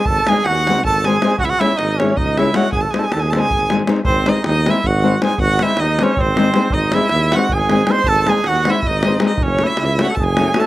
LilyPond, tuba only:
\new Staff \with { instrumentName = "Tuba" } { \clef bass \time 7/8 \tempo 4 = 158 gis,,8 r8 dis,4 gis,,4. | cis,8 r8 gis,,4 cis,4. | gis,,8 r8 dis,4 gis,,4. | gis,,4 dis,4 gis,,4. |
gis,,4 dis,4 gis,,4. | gis,,4 dis,4 gis,,4. | gis,,4 dis,4 gis,,4. | fis,,4 cis,4 fis,,4. | }